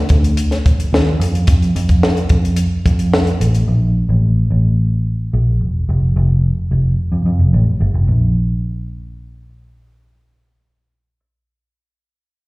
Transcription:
0.09 0.89 D2 medium
0.09 kick loud
0.09 closed hi-hat medium
0.24 closed hi-hat medium
0.37 closed hi-hat loud
0.51 snare soft
0.51 closed hi-hat soft
0.66 kick loud
0.66 closed hi-hat medium
0.80 closed hi-hat medium
0.93 1.15 D#2 medium
0.93 snare loud
1.20 1.42 F2 loud
1.20 closed hi-hat medium
1.35 closed hi-hat soft
1.47 1.70 F2 loud
1.47 kick loud
1.47 closed hi-hat loud
1.62 closed hi-hat soft
1.76 2.09 F2 loud
1.76 closed hi-hat medium
1.89 kick medium
1.89 closed hi-hat medium
2.03 snare loud
2.17 closed hi-hat soft
2.29 2.64 F2 loud
2.29 kick loud
2.29 closed hi-hat medium
2.45 closed hi-hat medium
2.56 closed hi-hat medium
2.86 3.30 F2 loud
2.86 kick loud
2.86 closed hi-hat medium
2.99 closed hi-hat medium
3.14 snare loud
3.27 closed hi-hat soft
3.40 3.63 A1 loud
3.40 closed hi-hat medium
3.54 closed hi-hat soft
3.68 4.01 A#1 loud
4.09 4.42 A1 loud
4.51 5.29 A1 medium
5.33 5.61 A#1 loud
5.61 5.83 E1 medium
5.89 6.11 F1 loud
6.16 6.49 F1 loud
6.71 6.93 F1 medium
7.12 7.23 F2 medium
7.26 7.37 F2 loud
7.39 7.50 F1 medium
7.53 7.64 A1 loud
7.80 7.92 G1 loud
7.94 8.05 F1 medium
8.08 11.19 A#1 loud

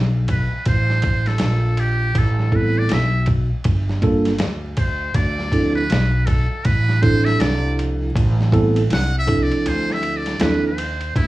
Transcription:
0.00 0.48 B1 medium
0.28 0.64 B4 medium
0.28 kick loud
0.28 ride medium
0.52 muted upright bass stroke soft
0.65 1.37 A1 medium
0.65 1.29 C5 medium
0.65 kick medium
0.65 ride medium
0.90 snare soft
1.02 kick medium
1.02 ride soft
1.26 1.81 A4 medium
1.26 snare soft
1.26 ride soft
1.38 2.12 A#1 loud
1.38 snare loud
1.38 hi-hat pedal soft
1.38 ride medium
1.77 2.19 G4 medium
1.77 ride medium
2.15 2.86 A1 loud
2.15 2.57 A4 loud
2.15 kick loud
2.15 ride medium
2.39 snare soft
2.52 2.99 G3 medium
2.52 2.99 B3 medium
2.52 2.99 C4 medium
2.52 2.99 E4 medium
2.52 2.99 A4 medium
2.52 2.80 B4 medium
2.52 kick medium
2.52 ride medium
2.78 2.94 D5 loud
2.89 3.48 B1 medium
2.89 3.29 E5 medium
2.89 snare loud
2.89 hi-hat pedal soft
2.89 ride medium
3.26 kick medium
3.26 ride medium
3.51 muted upright bass stroke soft
3.64 4.36 G1 loud
3.64 kick loud
3.64 ride medium
3.89 snare soft
4.02 4.31 G3 medium
4.02 4.31 A#3 medium
4.02 4.31 D4 medium
4.02 4.32 F4 medium
4.02 4.32 A4 medium
4.02 kick loud
4.02 ride soft
4.25 snare soft
4.25 ride soft
4.38 5.11 D2 loud
4.38 snare loud
4.38 hi-hat pedal soft
4.38 ride medium
4.77 5.16 C5 medium
4.77 kick medium
4.77 ride medium
5.14 5.86 D2 loud
5.14 5.74 D5 loud
5.14 kick loud
5.14 ride medium
5.39 snare soft
5.52 5.81 F3 medium
5.52 5.82 C4 medium
5.52 5.82 D4 medium
5.52 5.82 E4 medium
5.52 5.82 A4 medium
5.52 kick medium
5.52 ride medium
5.75 6.27 B4 medium
5.90 6.48 B1 loud
5.90 snare loud
5.90 hi-hat pedal soft
5.90 ride medium
6.26 6.66 A4 medium
6.26 kick medium
6.26 ride medium
6.51 muted upright bass stroke soft
6.65 7.36 A1 loud
6.65 7.03 B4 medium
6.65 kick medium
6.65 ride medium
6.89 snare soft
7.02 8.09 F3 medium
7.02 8.09 C4 medium
7.02 8.09 D4 medium
7.02 8.09 E4 medium
7.02 8.09 A4 medium
7.02 7.26 C5 loud
7.02 kick loud
7.02 ride soft
7.25 7.42 E5 loud
7.25 snare soft
7.25 ride soft
7.40 8.11 C2 loud
7.40 7.78 D5 loud
7.40 snare loud
7.40 hi-hat pedal soft
7.40 ride medium
7.79 ride medium
8.15 8.87 A1 loud
8.15 kick loud
8.15 ride medium
8.41 snare soft
8.52 8.81 G3 medium
8.52 8.82 B3 medium
8.52 8.82 C4 medium
8.52 8.82 E4 medium
8.52 8.82 A4 loud
8.52 kick medium
8.52 ride medium
8.76 ride soft
8.90 9.48 C2 loud
8.90 9.15 F#5 loud
8.90 snare loud
8.90 hi-hat pedal soft
8.90 ride medium
9.18 9.44 E5 loud
9.26 10.34 F3 medium
9.26 10.34 C4 medium
9.26 10.34 D4 medium
9.26 10.34 E4 medium
9.26 10.34 A4 medium
9.26 kick medium
9.26 ride medium
9.43 9.70 D5 medium
9.51 muted upright bass stroke soft
9.51 ride soft
9.66 10.37 D2 loud
9.66 9.94 C5 loud
9.66 ride medium
9.90 10.18 E5 medium
9.90 snare soft
10.03 ride medium
10.17 10.43 D5 medium
10.26 snare soft
10.26 ride soft
10.40 11.12 D#2 loud
10.40 10.69 F3 medium
10.40 10.69 C4 medium
10.40 10.69 D4 medium
10.40 10.69 E4 medium
10.40 10.69 A4 medium
10.40 10.66 B4 medium
10.40 snare loud
10.40 hi-hat pedal soft
10.40 ride medium
10.67 11.12 C5 medium
10.78 ride medium
11.01 ride soft
11.16 11.27 D2 loud
11.16 11.27 E4 loud
11.16 kick loud
11.16 ride medium

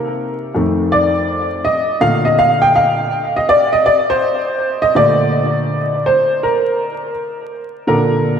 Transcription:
0.00 0.52 C3 medium
0.00 0.52 D#3 medium
0.00 0.52 A#3 medium
0.55 1.61 F2 medium
0.55 1.61 D#3 medium
0.55 1.62 A3 medium
0.92 1.68 D5 medium
1.65 2.03 D#5 medium
2.00 3.07 A#2 medium
2.00 3.07 D3 soft
2.00 3.08 A3 medium
2.00 2.26 F5 loud
2.25 2.39 D#5 medium
2.39 2.63 F5 loud
2.62 2.75 G5 medium
2.76 3.37 F5 loud
3.36 3.49 D#5 medium
3.49 3.73 D5 loud
3.73 3.86 D#5 medium
3.86 4.10 D5 loud
4.10 4.85 C5 loud
4.82 4.95 D#5 medium
4.95 6.01 A#2 medium
4.95 6.01 D3 medium
4.95 6.01 A3 medium
4.95 6.09 D5 loud
6.06 6.43 C5 medium
6.43 7.11 A#4 medium
7.87 8.40 A#2 medium
7.87 8.40 D3 soft
7.87 8.40 D4 medium
7.87 8.40 A4 medium
7.87 8.40 A#4 medium

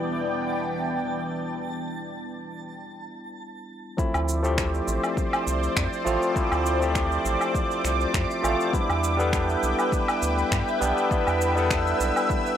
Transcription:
0.00 2.76 E3 medium
0.00 3.94 G3 medium
0.00 2.76 B3 medium
0.00 3.94 B3 medium
0.00 3.95 D4 medium
0.00 3.96 E4 medium
0.00 2.76 D5 medium
0.00 2.76 G5 medium
0.00 2.79 A5 medium
0.00 2.80 A6 medium
3.97 4.40 F3 medium
3.97 4.40 A3 medium
3.97 4.40 C4 medium
3.97 4.40 E4 medium
3.97 8.70 C5 medium
3.97 8.70 D5 medium
3.97 12.57 E5 medium
3.97 11.07 D6 medium
3.97 kick loud
3.97 cabasa soft
4.14 4.81 D2 loud
4.14 cabasa soft
4.14 low woodblock medium
4.29 cabasa medium
4.42 5.43 F3 medium
4.42 5.44 A3 medium
4.42 5.44 C4 medium
4.42 5.45 G4 medium
4.42 cabasa soft
4.58 finger snap loud
4.58 kick loud
4.58 cabasa soft
4.74 cabasa soft
4.88 4.99 A1 loud
4.88 cabasa medium
5.04 cabasa soft
5.04 low woodblock medium
5.17 kick loud
5.17 cabasa soft
5.33 cabasa soft
5.33 low woodblock medium
5.47 5.69 C2 medium
5.47 cabasa medium
5.63 cabasa soft
5.77 5.88 F2 medium
5.77 finger snap loud
5.77 kick loud
5.77 cabasa soft
5.93 cabasa soft
6.05 6.17 A1 medium
6.05 6.32 F3 medium
6.05 6.32 A3 medium
6.05 6.33 C4 medium
6.05 6.33 F4 loud
6.05 cabasa medium
6.22 cabasa soft
6.34 6.77 F3 medium
6.34 6.77 A3 medium
6.34 6.78 C4 medium
6.34 6.78 E4 medium
6.34 kick loud
6.34 cabasa soft
6.52 7.19 D2 loud
6.52 cabasa soft
6.52 low woodblock medium
6.66 cabasa medium
6.80 7.81 F3 medium
6.80 7.81 A3 medium
6.80 7.82 C4 medium
6.80 7.82 G4 medium
6.80 cabasa soft
6.95 finger snap loud
6.95 kick loud
6.95 cabasa soft
7.12 cabasa soft
7.25 7.36 A1 loud
7.25 cabasa medium
7.41 cabasa soft
7.41 low woodblock medium
7.55 kick loud
7.55 cabasa soft
7.71 cabasa soft
7.84 8.06 C2 medium
7.84 finger snap soft
7.84 cabasa medium
8.01 cabasa soft
8.14 8.25 F2 medium
8.14 finger snap loud
8.14 kick loud
8.14 cabasa soft
8.31 cabasa soft
8.43 8.55 A1 medium
8.43 8.70 F3 medium
8.43 8.70 A3 medium
8.43 8.70 C4 medium
8.43 8.71 F4 medium
8.43 cabasa medium
8.43 low woodblock medium
8.60 cabasa soft
8.72 9.15 G3 medium
8.72 9.15 B3 medium
8.72 9.15 D4 medium
8.72 9.16 E4 medium
8.72 12.57 B4 medium
8.72 12.57 G5 medium
8.72 kick loud
8.72 cabasa soft
8.90 9.56 E2 loud
8.90 cabasa soft
8.90 low woodblock medium
9.04 cabasa medium
9.17 10.18 G3 medium
9.17 10.19 B3 medium
9.17 10.20 D4 medium
9.17 10.20 A4 medium
9.17 cabasa soft
9.33 finger snap loud
9.33 kick loud
9.33 cabasa soft
9.49 cabasa soft
9.63 9.74 B1 medium
9.63 cabasa medium
9.79 cabasa soft
9.79 low woodblock medium
9.92 kick loud
9.92 cabasa soft
10.08 cabasa soft
10.08 low woodblock medium
10.22 10.44 D2 medium
10.22 cabasa medium
10.38 cabasa soft
10.52 10.63 G2 medium
10.52 finger snap loud
10.52 kick loud
10.52 cabasa medium
10.68 cabasa soft
10.80 10.93 B1 medium
10.80 11.07 G3 medium
10.80 11.07 B3 medium
10.80 11.08 D4 medium
10.80 11.08 G4 loud
10.80 cabasa medium
10.98 cabasa soft
11.10 11.52 G3 medium
11.10 11.53 B3 medium
11.10 11.53 D4 medium
11.10 11.53 E4 medium
11.10 12.57 E6 medium
11.10 kick loud
11.10 cabasa soft
11.27 11.94 E2 loud
11.27 cabasa soft
11.27 low woodblock medium
11.41 cabasa medium
11.55 12.56 G3 medium
11.55 12.57 B3 medium
11.55 12.57 D4 medium
11.55 12.57 A4 loud
11.55 cabasa soft
11.70 finger snap loud
11.70 kick loud
11.70 cabasa soft
11.87 cabasa soft
12.00 12.12 B1 loud
12.00 cabasa medium
12.16 cabasa soft
12.16 low woodblock medium
12.30 kick loud
12.30 cabasa soft
12.46 cabasa soft

